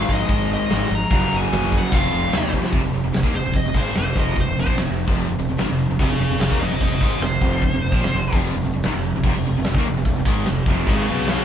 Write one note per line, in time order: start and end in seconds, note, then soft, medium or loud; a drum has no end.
0.00 0.69 G#2 medium
0.00 0.89 G#2 medium
0.00 0.69 D#3 loud
0.00 0.90 D#3 medium
0.00 0.71 G#3 loud
0.00 0.91 G#3 medium
0.00 0.13 F5 medium
0.09 0.22 G#1 medium
0.09 0.91 G#2 medium
0.09 0.90 D#3 medium
0.09 0.89 G#3 medium
0.09 0.49 D#5 loud
0.09 kick medium
0.09 ride medium
0.29 0.55 G#1 loud
0.29 kick loud
0.29 ride loud
0.50 0.93 D#5 medium
0.50 ride medium
0.70 0.84 G#1 medium
0.70 0.89 G#2 medium
0.70 0.89 D#3 medium
0.70 0.90 G#3 medium
0.70 snare loud
0.70 ride loud
0.91 1.03 G#1 medium
0.91 ride medium
0.95 1.34 A#5 medium
1.11 1.24 F#1 medium
1.11 1.91 F#2 medium
1.11 1.92 C#3 medium
1.11 1.92 F#3 loud
1.11 kick loud
1.11 ride loud
1.31 1.45 F#1 medium
1.31 ride medium
1.37 1.76 G#5 medium
1.43 snare soft
1.53 1.78 F#1 loud
1.53 snare loud
1.53 ride medium
1.72 1.92 F#2 medium
1.72 1.92 C#3 medium
1.72 1.91 F#3 medium
1.72 kick medium
1.72 ride medium
1.78 1.94 F#5 medium
1.92 2.05 F1 medium
1.92 2.72 F2 medium
1.92 2.73 C3 medium
1.92 2.73 F3 loud
1.92 2.50 F5 medium
1.92 kick loud
1.92 ride loud
2.12 2.25 F1 medium
2.12 ride medium
2.33 2.59 D#2 loud
2.33 snare loud
2.33 ride loud
2.53 2.74 F2 medium
2.53 2.73 C3 medium
2.53 2.72 F3 medium
2.53 kick medium
2.64 snare medium
2.73 2.83 F1 medium
2.73 2.82 F2 loud
2.73 2.82 C3 loud
2.73 kick loud
2.73 open hi-hat medium
2.84 2.93 F1 medium
2.84 2.92 F2 medium
2.84 2.93 C3 medium
2.93 3.03 F1 medium
2.93 3.03 F2 medium
2.93 3.03 C3 medium
2.93 open hi-hat medium
3.04 3.14 F1 medium
3.04 3.13 F2 medium
3.04 3.12 C3 medium
3.14 3.22 F1 medium
3.14 3.24 F2 medium
3.14 3.23 C3 medium
3.14 snare medium
3.14 open hi-hat medium
3.23 3.33 D#2 medium
3.23 3.34 D#3 medium
3.23 3.34 A#3 loud
3.23 kick medium
3.34 3.44 F1 medium
3.34 3.43 F2 medium
3.34 3.43 C3 medium
3.34 3.55 C5 medium
3.34 snare soft
3.34 open hi-hat medium
3.44 3.54 F1 medium
3.44 3.53 F2 medium
3.44 3.53 C3 medium
3.53 3.64 F1 medium
3.53 3.63 F2 medium
3.53 3.64 C3 medium
3.53 3.75 D#5 medium
3.53 kick medium
3.53 open hi-hat medium
3.64 3.73 F1 medium
3.64 3.74 F2 medium
3.64 3.75 C3 medium
3.74 3.93 G#1 medium
3.74 3.94 G#2 medium
3.74 3.95 D#3 medium
3.74 3.95 G#3 loud
3.74 3.96 C5 medium
3.74 kick loud
3.74 open hi-hat medium
3.95 4.15 F1 medium
3.95 4.12 F2 medium
3.95 4.12 C3 medium
3.95 4.17 C5 medium
3.95 snare loud
3.95 open hi-hat medium
4.15 4.35 F1 medium
4.15 4.34 F2 medium
4.15 4.35 C3 medium
4.15 4.36 F3 medium
4.15 kick loud
4.15 open hi-hat medium
4.19 4.37 D#5 medium
4.35 4.46 F1 medium
4.35 4.44 F2 medium
4.35 4.43 C3 medium
4.35 kick medium
4.35 open hi-hat medium
4.41 4.54 F2 medium
4.41 4.55 C3 medium
4.41 4.58 C5 medium
4.47 4.56 F1 medium
4.56 4.66 F1 medium
4.56 4.66 F2 medium
4.56 4.65 C3 medium
4.56 open hi-hat medium
4.61 4.78 C5 medium
4.66 4.76 A#1 medium
4.66 4.75 A#2 medium
4.66 4.76 F3 medium
4.66 kick loud
4.76 4.88 F1 medium
4.76 4.85 F2 medium
4.76 4.86 C3 medium
4.76 snare loud
4.76 open hi-hat medium
4.80 4.87 F2 medium
4.80 4.88 C3 medium
4.86 5.07 F1 medium
4.86 5.03 F2 medium
4.86 5.04 C3 medium
4.97 open hi-hat medium
5.06 5.27 F1 medium
5.06 5.27 F2 medium
5.06 5.27 C3 medium
5.06 5.27 F3 medium
5.06 kick loud
5.18 open hi-hat medium
5.29 5.38 F1 medium
5.29 5.37 F2 medium
5.29 5.38 C3 medium
5.39 5.48 F1 medium
5.39 5.48 F2 medium
5.39 5.49 C3 medium
5.39 open hi-hat medium
5.49 5.58 F1 medium
5.49 5.57 F2 medium
5.49 5.58 C3 medium
5.58 5.69 G#1 medium
5.58 5.68 G#2 medium
5.58 5.68 D#3 loud
5.58 snare loud
5.58 open hi-hat medium
5.70 5.88 F1 medium
5.70 5.86 F2 medium
5.70 5.85 C3 medium
5.79 open hi-hat medium
5.90 5.99 F1 medium
5.90 5.98 F2 medium
5.90 5.99 C3 medium
5.99 6.08 F1 medium
5.99 6.09 F2 medium
5.99 6.09 C3 loud
5.99 6.19 G#4 loud
5.99 6.19 F5 loud
5.99 kick loud
5.99 open hi-hat medium
6.09 6.18 F1 medium
6.09 6.20 F2 medium
6.09 6.20 C3 medium
6.19 6.28 F1 medium
6.19 6.30 F2 medium
6.19 6.31 C3 medium
6.19 6.39 G#4 medium
6.19 6.39 F5 medium
6.19 open hi-hat medium
6.29 6.39 F1 medium
6.29 6.41 F2 medium
6.29 6.41 C3 medium
6.39 6.49 F1 medium
6.39 6.51 F2 medium
6.39 6.51 C3 medium
6.39 6.59 G#4 medium
6.39 6.60 F5 medium
6.39 snare loud
6.39 open hi-hat medium
6.50 6.60 D#2 medium
6.50 6.60 D#3 loud
6.50 6.60 A#3 loud
6.50 kick loud
6.60 6.70 F1 medium
6.60 6.70 F2 medium
6.60 6.70 C3 medium
6.60 6.79 C5 medium
6.60 6.81 D#5 medium
6.60 snare soft
6.60 open hi-hat medium
6.71 6.80 F1 medium
6.71 6.81 F2 medium
6.71 6.81 C3 medium
6.81 6.90 F1 medium
6.81 6.91 F2 medium
6.81 6.91 C3 medium
6.81 7.00 C5 medium
6.81 7.00 D#5 medium
6.81 kick medium
6.81 open hi-hat medium
6.90 7.00 F1 medium
6.90 7.02 F2 medium
6.90 7.02 C3 medium
7.01 7.19 G#1 medium
7.01 7.22 G#2 loud
7.01 7.22 D#3 medium
7.01 7.22 G#3 loud
7.01 7.20 C5 medium
7.01 7.21 D#5 medium
7.01 kick loud
7.01 open hi-hat medium
7.20 7.39 F1 medium
7.20 7.39 F2 medium
7.20 7.39 C3 medium
7.20 8.40 C5 medium
7.20 snare loud
7.20 open hi-hat medium
7.41 7.60 F1 medium
7.41 7.62 F2 medium
7.41 7.62 C3 medium
7.41 7.62 F3 loud
7.41 kick loud
7.41 open hi-hat medium
7.62 7.72 F1 medium
7.62 7.73 F2 medium
7.62 7.73 C3 medium
7.62 kick loud
7.62 open hi-hat medium
7.74 7.83 F1 medium
7.74 7.83 F2 medium
7.74 7.84 C3 medium
7.84 7.92 F1 medium
7.84 7.94 F2 medium
7.84 7.93 C3 medium
7.84 open hi-hat soft
7.92 8.02 A#1 medium
7.92 8.03 A#2 medium
7.92 8.03 F3 loud
7.92 kick loud
8.04 8.12 F1 medium
8.04 8.12 F2 medium
8.04 8.13 C3 medium
8.04 snare loud
8.04 open hi-hat medium
8.13 8.32 F1 medium
8.13 8.29 F2 medium
8.13 8.30 C3 medium
8.22 open hi-hat medium
8.33 8.52 F1 medium
8.33 8.53 F2 medium
8.33 8.54 C3 medium
8.33 8.54 F3 loud
8.33 kick loud
8.44 open hi-hat medium
8.54 8.64 F1 medium
8.54 8.62 F2 medium
8.54 8.62 C3 medium
8.63 8.74 F1 medium
8.63 8.72 F2 medium
8.63 8.73 C3 medium
8.63 open hi-hat medium
8.74 8.85 F1 medium
8.74 8.83 F2 medium
8.74 8.84 C3 medium
8.83 8.94 G#1 medium
8.83 8.94 G#2 medium
8.83 8.94 D#3 loud
8.83 snare loud
8.83 open hi-hat medium
8.95 9.13 F1 medium
8.95 9.11 F2 medium
8.95 9.11 C3 medium
9.04 open hi-hat medium
9.16 9.23 F1 medium
9.16 9.25 F2 medium
9.16 9.25 C3 medium
9.23 9.34 F1 medium
9.23 9.35 F2 loud
9.23 9.35 C3 loud
9.23 kick loud
9.23 crash loud
9.36 9.46 F1 medium
9.36 9.44 F2 medium
9.36 9.45 C3 medium
9.44 9.56 F2 medium
9.44 9.56 C3 medium
9.44 open hi-hat medium
9.49 9.57 F1 medium
9.57 9.67 F1 medium
9.57 9.66 F2 medium
9.57 9.67 C3 medium
9.64 9.75 F1 medium
9.64 9.77 F2 medium
9.64 snare loud
9.64 open hi-hat medium
9.69 9.77 C3 medium
9.75 9.85 D#2 medium
9.75 9.87 D#3 medium
9.75 9.87 A#3 loud
9.75 kick loud
9.84 9.96 F1 medium
9.84 9.97 F2 medium
9.84 9.97 C3 medium
9.84 open hi-hat medium
9.98 10.05 F1 medium
9.98 10.06 F2 medium
9.98 10.07 C3 medium
10.05 10.16 F1 medium
10.05 10.16 F2 medium
10.05 10.17 C3 medium
10.05 kick medium
10.05 open hi-hat medium
10.17 10.25 F1 medium
10.17 10.26 F2 medium
10.17 10.27 C3 medium
10.25 10.45 G#1 medium
10.25 10.46 G#2 medium
10.25 10.47 D#3 medium
10.25 10.47 G#3 loud
10.25 kick loud
10.25 open hi-hat medium
10.37 snare soft
10.45 10.64 F2 medium
10.45 10.64 C3 medium
10.45 snare medium
10.45 open hi-hat medium
10.50 10.66 F1 medium
10.66 10.86 F1 medium
10.66 10.87 F2 medium
10.66 10.87 C3 medium
10.66 10.87 F3 medium
10.66 kick loud
10.66 open hi-hat medium
10.87 11.07 G#1 medium
10.87 11.07 G#2 medium
10.87 11.08 D#3 loud
10.87 11.08 G#3 loud
10.87 11.07 G#4 loud
10.87 11.08 F5 loud
10.87 kick loud
10.87 open hi-hat medium
11.06 11.45 B1 medium
11.06 11.45 B2 medium
11.06 11.45 F#3 medium
11.06 11.45 B3 medium
11.06 11.27 G#4 medium
11.06 11.28 F5 medium
11.06 open hi-hat medium
11.27 11.45 G#4 medium
11.27 11.45 F5 loud
11.27 snare loud
11.27 open hi-hat medium